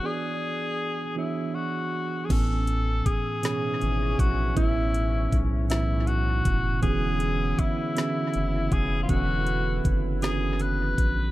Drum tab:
CC |------|x-----|------|------|
HH |------|xxxxxx|xxxxxx|xxxxxx|
SD |------|---o--|---o--|---o--|
BD |------|o-o--o|o-o--o|o-o--o|

CC |------|
HH |xxxxxx|
SD |---o--|
BD |o-o--o|